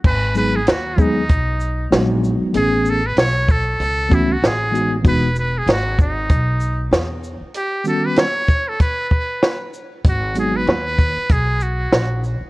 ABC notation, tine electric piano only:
X:1
M:4/4
L:1/8
Q:"Swing 16ths" 1/4=96
K:G#phr
V:1 name="Tine electric piano"
z [F,G,B,DG] z [F,G,B,DG] z2 [F,G,B,DF]2 | [E,A,B,CG] z4 [E,A,B,CF] z [E,G,B,DF] | [E,G,B,DF] z6 z | z [D,=G,B,CF] z6 |
z [F,G,B,DF] z6 |]